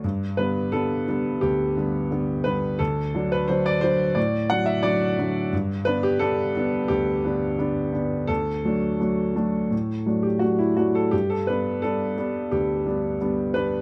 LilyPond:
<<
  \new Staff \with { instrumentName = "Grand piano" } { \time 4/4 \key g \major \tempo 4 = 87 r8 b'8 a'4 g'4. b'8 | a'8. b'16 c''16 d''16 c''8 d''8 fis''16 e''16 d''4 | r8 b'16 g'16 a'4 g'2 | a'2~ a'8. g'16 fis'16 e'16 fis'16 a'16 |
g'16 a'16 b'8 a'4 g'4. b'8 | }
  \new Staff \with { instrumentName = "Grand piano" } { \clef bass \time 4/4 \key g \major g,8 <d g b>8 <d g b>8 <d g b>8 d,8 <d g b>8 <d g b>8 <d g b>8 | d,8 <d fis d'>8 <d fis d'>8 <d fis d'>8 a,8 <d fis d'>8 <d fis d'>8 <d fis d'>8 | g,8 <d b d'>8 <d b d'>8 <d b d'>8 d,8 <d b d'>8 <d b d'>8 <d b d'>8 | d,8 <fis a d'>8 <fis a d'>8 <fis a d'>8 a,8 <fis a d'>8 <fis a d'>8 <fis a d'>8 |
g,8 <g b d'>8 <g b d'>8 <g b d'>8 d,8 <g b d'>8 <g b d'>8 <g b d'>8 | }
>>